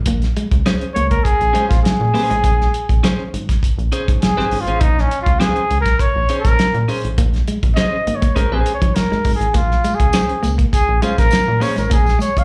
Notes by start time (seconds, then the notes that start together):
0.06 A#1 A#3, kick, closed hi-hat
0.22 muted clean electric guitar stroke, snare, closed hi-hat
0.36 G#3, closed hi-hat
0.51 C#2, kick, closed hi-hat
0.66 C#4 G#4 C5, muted clean electric guitar stroke, snare, closed hi-hat
0.81 closed hi-hat
0.94 C#2 A#3 C#5, closed hi-hat
1.10 A#3 A#4, kick, closed hi-hat
1.24 G#4, kick, closed hi-hat
1.41 A#1, closed hi-hat
1.53 G#3 C#4 G#4 C5, closed hi-hat
1.68 A#1 F4, kick, closed hi-hat
1.72 snare
1.82 G#4, muted clean electric guitar stroke, snare, closed hi-hat
2.00 A#2
2.14 A#3 C#4 G#4 C5, open hi-hat
2.30 A1 G#3, closed hi-hat
2.44 A#1, kick, closed hi-hat
2.61 snare
2.74 closed hi-hat
2.89 A#1, kick, closed hi-hat
3.03 C#4 G#4 C5, snare, closed hi-hat
3.33 G#1, closed hi-hat
3.49 kick, snare, closed hi-hat
3.63 kick, closed hi-hat
3.78 A#1, closed hi-hat
3.92 C#4 G#4 C5, closed hi-hat
4.08 G#1, kick, closed hi-hat
4.22 G#4, snare, closed hi-hat
4.37 G#1 C#4 G#4 C5, snare
4.51 G#1, open hi-hat
4.61 F4
4.67 A1 C#4 G#4 C5, closed hi-hat
4.80 A#1 D#4, kick, closed hi-hat
4.98 C#4, snare
5.11 closed hi-hat
5.22 F4
5.26 C#2, kick, closed hi-hat
5.40 C#4 G#4 C5, snare, closed hi-hat
5.56 closed hi-hat
5.71 C#2, closed hi-hat
5.81 A#4
5.86 kick, snare, closed hi-hat
5.99 C#5, kick, closed hi-hat
6.16 A#1
6.29 C#4 G#4 C5, closed hi-hat
6.40 A#4
6.45 A#1, kick, snare, closed hi-hat
6.59 snare, closed hi-hat
6.74 A#2, closed hi-hat
6.88 C#4 G#4 C5, open hi-hat
7.04 A1, closed hi-hat
7.18 A#1 A#3, kick, closed hi-hat
7.34 muted clean electric guitar stroke, snare, closed hi-hat
7.48 G#3, closed hi-hat
7.63 A#1, kick, closed hi-hat
7.75 C#4 G#4 C5 D#5, muted clean electric guitar stroke, snare, closed hi-hat
8.07 G#1 A#3, closed hi-hat
8.16 C#5
8.22 A#3, kick, closed hi-hat
8.36 G#3 C#4 G#4 A#4 C5, kick, closed hi-hat
8.52 A#1 C#4 G#4 C5, muted clean electric guitar stroke
8.66 closed hi-hat
8.74 C#5
8.82 G#1 F3, kick, closed hi-hat
8.95 A#4, muted clean electric guitar stroke, snare, closed hi-hat
9.11 G#1 G#3, snare
9.24 G#1 G#3, kick, open hi-hat
9.35 G#4
9.40 A1, closed hi-hat
9.54 A#1 A#3 F4, kick, closed hi-hat, tambourine
9.70 muted clean electric guitar stroke, snare
9.84 G#3, closed hi-hat, tambourine
9.95 G#4
10.00 C#2, kick, closed hi-hat
10.13 C#4 G#4 C5, muted clean electric guitar stroke, snare, closed hi-hat, tambourine
10.29 closed hi-hat
10.43 C#2 A#3, closed hi-hat, tambourine
10.58 A#3, kick, closed hi-hat
10.72 G#4, kick, closed hi-hat, tambourine
10.88 A#1
11.02 G#3 C#4 F4 G#4 C5, closed hi-hat, tambourine
11.18 A#1 A#4, kick, snare, closed hi-hat
11.31 muted clean electric guitar stroke, snare, closed hi-hat, tambourine
11.48 A#2
11.60 A#3 C#4 G#4 C5 C#5, open hi-hat, tambourine
11.76 A1 G#3 A#4, closed hi-hat, tambourine
11.90 A#1 A#3 G#4, kick, closed hi-hat, tambourine
12.05 muted clean electric guitar stroke, snare, tambourine
12.19 G#3 C#5, closed hi-hat, tambourine
12.37 A#1 F5, kick, closed hi-hat